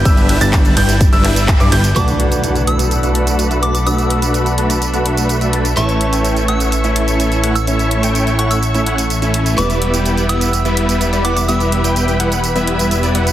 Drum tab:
RD |--x---x---x---x-|----------------|----------------|----------------|
HH |xxoxxxoxxxoxxxox|xxxxxxxxxxxxxxxx|xxxxxxxxxxxxxxxx|xxxxxxxxxxxxxxxx|
TB |xx-xxx-xxx-xxx-x|xx-xxx-xxx-xxx-x|xx-xxx-xxx-xxx-x|xx-xxx-xxx-xxx-x|
CP |----x-----x-x---|----------------|----------------|----------------|
BD |o---o---o---o---|----------------|----------------|----------------|

RD |----------------|----------------|----------------|
HH |xxxxxxxxxxxxxxxx|xxxxxxxxxxxxxxxx|xxxxxxxxxxxxxxxx|
TB |xx-xxx-xxx-xxx-x|xx-xxx-xxx-xxx-x|xx-xxx-xxx-xxx-x|
CP |----------------|----------------|----------------|
BD |----------------|----------------|----------------|